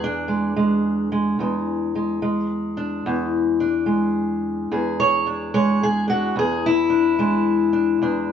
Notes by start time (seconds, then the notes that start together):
Already playing: E2
0.04 D4
0.28 G#3
0.56 G#3
1.12 G#3
1.39 E2 G#3
1.95 G#3
2.22 G#3
2.77 D4
3.06 E2
3.60 D4
3.86 G#3
4.71 E2 G#4
5.00 C#5
5.26 D4
5.54 G#3 C#5
5.83 G#4
6.08 D4 F#4
6.36 E2 G#4
6.66 E4
6.90 D4
7.19 G#3 D4
7.73 D4
8.02 E2 D4